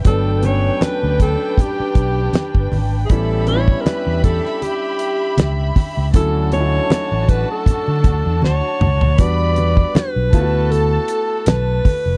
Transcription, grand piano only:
X:1
M:4/4
L:1/8
Q:"Swing 16ths" 1/4=79
K:D
V:1 name="Grand piano"
[F,A,B,D] [F,A,B,C]2 z4 z | [G,B,CE] [G,B,CDE]2 z4 z | [F,A,CE] [F,A,C^DE]2 z4 z | [G,B,DF]2 z [A,B,E=F^F]3 z2 |]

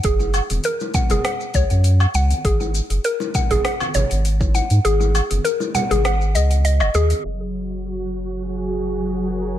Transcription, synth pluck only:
X:1
M:4/4
L:1/16
Q:"Swing 16ths" 1/4=100
K:F#mix
V:1 name="Synth pluck"
G4 A2 f G f2 c4 f2 | G4 A2 f G f2 c4 f2 | G4 A2 f G f z d z d d G z | z16 |]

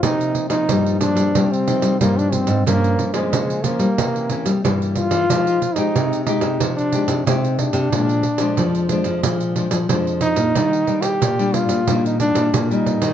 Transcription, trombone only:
X:1
M:4/4
L:1/16
Q:1/4=91
K:Cm
V:1 name="Trombone"
E3 E3 D3 C3 B, D C2 | B,3 A,3 B,6 z2 F2- | F3 E3 E3 D3 C2 D2- | D8- D2 z4 E2- |
E3 G3 F3 E D3 E3 |]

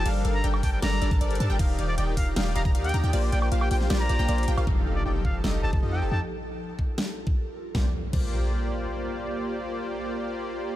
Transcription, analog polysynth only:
X:1
M:4/4
L:1/16
Q:1/4=156
K:Bb
V:1 name="Analog polysynth"
[G,DABf]2 [G,DABf]2 [G,DABg]2 [G,DABa]2 [G,DABd]2 [G,DABd] [G,DABa] [G,DABd]2 [G,DABa] [G,DABg] | [E,EGdf]2 [E,EGdf]2 [E,EGdg]2 [E,EGdb]2 [E,EGdf]2 [E,EGdf] [E,EGdb] [E,EGdf]2 [E,EGdb] [E,EGdg] | [B,FGcd]2 [B,FGcd]2 [B,FGcf]2 [B,FGcg]2 [B,FGcd]2 [B,FGcd] [B,FGcg] [B,FGcd]2 [B,FGcg] [B,FGcf] | [F,EGAf]2 [F,EGAf]2 [F,EGAg]2 [F,EGAa]2 [F,EGAe]2 [F,EGAe] [F,EGAa] [F,EGAe]2 [F,EGAa] [F,EGAg] |
z16 | [B,FGcd] z3 [B,FGcd]12- | [B,FGcd]16 |]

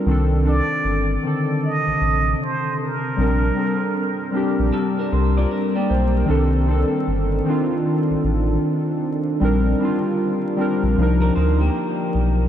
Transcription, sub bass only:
X:1
M:4/4
L:1/16
Q:"Swing 16ths" 1/4=77
K:Cdor
V:1 name="Sub bass" clef=bass
C,,3 z G,,,2 z3 A,,, A,,,2 z4 | B,,,2 z4 z B,,, z2 C,,2 z2 =B,,,2 | C,,3 z G,,,2 z3 A,,, A,,,2 z4 | B,,,2 z4 z B,,, C,,2 D,,2 z2 =B,,,2 |]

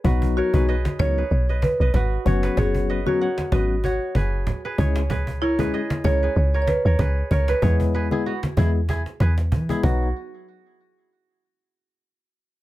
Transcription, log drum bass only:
X:1
M:4/4
L:1/16
Q:"Swing 16ths" 1/4=95
K:B
V:1 name="Log drum bass" clef=bass
B,,,3 B,,,3 C,,2 B,,,3 B,,, G,,,2 F,,,2 | F,,,4 z2 G,,,4 F,,,3 z C,,2- | C,,6 C,,2 C,,3 D,, C,,2 C,,2 | E,,4 z2 E,,4 E,,2 E,2 B,,,2 |
z16 |]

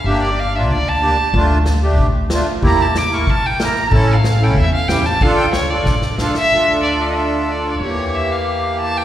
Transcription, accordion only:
X:1
M:2/4
L:1/16
Q:1/4=93
K:Dm
V:1 name="Accordion"
[B,DG]2 z [B,DF] z2 [B,DG] z | [A,DF]2 z [A,DG] z2 [A,DF] z | [B,EG]2 z [B,EB] z2 [B,EB] z | [^CEA]2 z [CEA] z2 [CEG] z |
[DFA]2 z [DFA] z2 [DFA] z | [DFA]8 | [E,B,G]8 |]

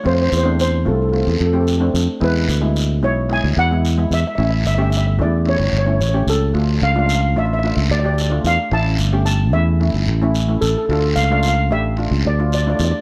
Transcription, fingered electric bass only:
X:1
M:4/4
L:1/16
Q:1/4=111
K:Dm
V:1 name="Fingered electric bass" clef=bass
F,,2 E,,4 C,,3 E,, F,,4 F,, z | E,,2 D,,4 =B,,,3 D,, E,,4 E,, z | A,,,2 G,,,4 E,,3 G,,, G,,,2 A,,,2 ^C,,2 | D,,2 ^C,,4 A,,,3 C,, D,,4 E,, z |
A,,,2 G,,,4 E,,3 G,,, A,,,4 A,,, z | D,,2 ^C,,4 A,,,3 C,, D,,4 E,, z |]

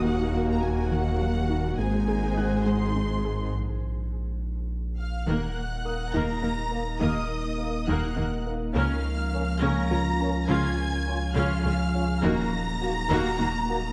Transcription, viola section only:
X:1
M:6/8
L:1/8
Q:3/8=69
K:Bbm
V:1 name="Viola section"
[B,G]6 | [A,E]6 | z6 | [K:Ebm] [B,B] z2 [B,B] [B,B] z |
[B,B] z2 [B,B] [B,B] z | [DB] z2 [DB] [DB] z | [DF] z2 [DF] [DF] z | [B,G] z2 [B,G] [B,G] z |]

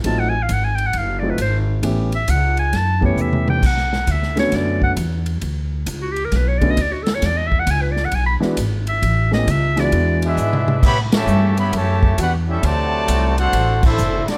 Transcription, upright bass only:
X:1
M:4/4
L:1/8
Q:"Swing" 1/4=133
K:Edor
V:1 name="Upright bass" clef=bass
A,,,2 ^G,,,2 F,,,2 G,,,2 | A,,,2 C,,2 F,,2 E,,2 | B,,,2 D,,2 F,,2 E,,2 | D,,2 C,,2 B,,,2 D,,2 |
E,,2 C,,2 B,,, z ^G,,,2 | A,,,2 C,,2 E,,2 ^G,,2 | [K:Dlyd] A,,2 =G,,2 F,,2 E,,2 | D,,2 =C,,2 A,,,2 F,,, z |]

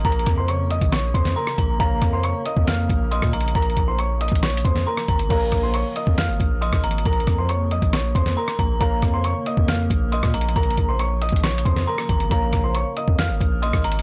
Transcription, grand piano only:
X:1
M:4/4
L:1/16
Q:1/4=137
K:Bbm
V:1 name="Grand piano"
[Bb]3 [cc'] [dd']2 [ee']2 [dd']2 [cc']2 [Bb]4 | [Bb]3 [cc'] [dd']2 [ee']2 [ff']4 [ee']4 | [Bb]3 [cc'] [dd']2 [ee']2 [dd']2 [cc']2 [Bb]4 | [Bb]3 [cc'] [dd']2 [ee']2 [ff']4 [ee']4 |
[Bb]3 [cc'] [dd']2 [ee']2 [dd']2 [cc']2 [Bb]4 | [Bb]3 [cc'] [dd']2 [ee']2 [ff']4 [ee']4 | [Bb]3 [cc'] [dd']2 [ee']2 [dd']2 [cc']2 [Bb]4 | [Bb]3 [cc'] [dd']2 [ee']2 [ff']4 [ee']4 |]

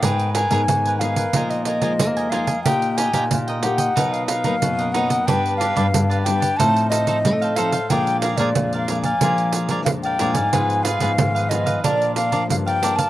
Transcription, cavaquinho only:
X:1
M:4/4
L:1/16
Q:1/4=91
K:Bbmix
V:1 name="Cavaquinho"
[AB_c]2 [ABca] [ABca] z [Bca] [ABca] [Bca] [FBea]2 [FBea] [FBea] z [Bea] [FBea] [Bea] | [GBeg]2 [GBeg] [GBeg] z [Beg] [GBeg] [Beg] [^D^A=B^d]2 [DABd] [DABd] z [ABd] [DABd] [ABd] | [DG=Bd]2 [DGBd] [DGBd] z [GBd] [DGBd] [GBd] [E=Acf]2 [EAcf] [EAcf] z [Acf] [EAcf] [Acf] | [ABdf]2 [ABdf] [ABdf] z [Bdf] [ABdf] [Bdf] [ABdf]2 [ABdf] [ABdf] z [Bdf] [ABdf] [Bdf] |
[FA_cf]2 [FAcf] [FAcf] z [Acf] [FAcf] [Acf] [DBdf]2 [DBdf] [DBdf] z [Bdf] [DBdf] [Bdf] |]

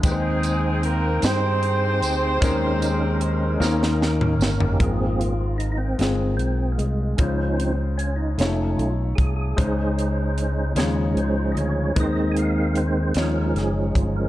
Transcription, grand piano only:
X:1
M:6/8
L:1/8
Q:3/8=50
K:Ab
V:1 name="Grand piano"
[A,E_c=cg]2 z [CEcg]2 z | [A,DEB]2 z [B,DEB]2 z | [A,CFB]2 z [A,CFA]2 z | [A,DFc]2 z [A,=A,EFd]2 z |
[A,DEc]2 z [A,EFd]2 z | [A,CE_c=c]2 z [A,EFd]2 z |]
V:2 name="Grand piano" clef=bass
E,3 z3 | E,3 E,3 | A,,3 z3 | D,3 z3 |
D,3 D,3 | E,3 E,3 |]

